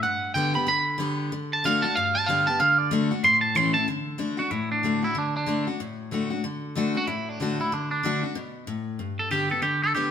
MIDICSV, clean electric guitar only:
0, 0, Header, 1, 2, 480
1, 0, Start_track
1, 0, Key_signature, 2, "major"
1, 0, Tempo, 319489
1, 74, Time_signature, 4, 2, 24, 8
1, 15188, End_track
2, 0, Start_track
2, 0, Title_t, "Clean electric guitar"
2, 0, Program_c, 0, 27
2, 43, Note_on_c, 0, 78, 102
2, 508, Note_off_c, 0, 78, 0
2, 514, Note_on_c, 0, 79, 102
2, 823, Note_off_c, 0, 79, 0
2, 829, Note_on_c, 0, 83, 96
2, 1009, Note_off_c, 0, 83, 0
2, 1027, Note_on_c, 0, 83, 103
2, 1961, Note_off_c, 0, 83, 0
2, 2302, Note_on_c, 0, 81, 95
2, 2473, Note_off_c, 0, 81, 0
2, 2485, Note_on_c, 0, 77, 95
2, 2739, Note_on_c, 0, 81, 98
2, 2768, Note_off_c, 0, 77, 0
2, 2931, Note_off_c, 0, 81, 0
2, 2936, Note_on_c, 0, 77, 111
2, 3229, Note_on_c, 0, 81, 108
2, 3233, Note_off_c, 0, 77, 0
2, 3402, Note_on_c, 0, 77, 97
2, 3416, Note_off_c, 0, 81, 0
2, 3705, Note_off_c, 0, 77, 0
2, 3710, Note_on_c, 0, 81, 111
2, 3896, Note_off_c, 0, 81, 0
2, 3902, Note_on_c, 0, 77, 101
2, 4179, Note_off_c, 0, 77, 0
2, 4179, Note_on_c, 0, 74, 106
2, 4370, Note_off_c, 0, 74, 0
2, 4874, Note_on_c, 0, 84, 109
2, 5121, Note_off_c, 0, 84, 0
2, 5127, Note_on_c, 0, 81, 104
2, 5348, Note_off_c, 0, 81, 0
2, 5348, Note_on_c, 0, 84, 91
2, 5611, Note_off_c, 0, 84, 0
2, 5617, Note_on_c, 0, 81, 106
2, 5808, Note_off_c, 0, 81, 0
2, 6594, Note_on_c, 0, 66, 82
2, 6773, Note_off_c, 0, 66, 0
2, 6773, Note_on_c, 0, 64, 78
2, 7071, Note_off_c, 0, 64, 0
2, 7085, Note_on_c, 0, 62, 86
2, 7552, Note_off_c, 0, 62, 0
2, 7577, Note_on_c, 0, 64, 77
2, 7750, Note_off_c, 0, 64, 0
2, 7787, Note_on_c, 0, 62, 83
2, 8042, Note_off_c, 0, 62, 0
2, 8060, Note_on_c, 0, 62, 92
2, 8521, Note_off_c, 0, 62, 0
2, 10476, Note_on_c, 0, 66, 95
2, 10628, Note_off_c, 0, 66, 0
2, 10628, Note_on_c, 0, 64, 88
2, 10952, Note_off_c, 0, 64, 0
2, 10952, Note_on_c, 0, 62, 90
2, 11408, Note_off_c, 0, 62, 0
2, 11429, Note_on_c, 0, 64, 82
2, 11620, Note_off_c, 0, 64, 0
2, 11620, Note_on_c, 0, 62, 84
2, 11868, Note_off_c, 0, 62, 0
2, 11886, Note_on_c, 0, 62, 81
2, 12355, Note_off_c, 0, 62, 0
2, 13812, Note_on_c, 0, 69, 89
2, 13988, Note_off_c, 0, 69, 0
2, 13994, Note_on_c, 0, 67, 90
2, 14284, Note_off_c, 0, 67, 0
2, 14292, Note_on_c, 0, 69, 81
2, 14456, Note_off_c, 0, 69, 0
2, 14462, Note_on_c, 0, 67, 89
2, 14758, Note_off_c, 0, 67, 0
2, 14777, Note_on_c, 0, 69, 106
2, 14939, Note_off_c, 0, 69, 0
2, 14945, Note_on_c, 0, 67, 84
2, 15188, Note_off_c, 0, 67, 0
2, 15188, End_track
0, 0, End_of_file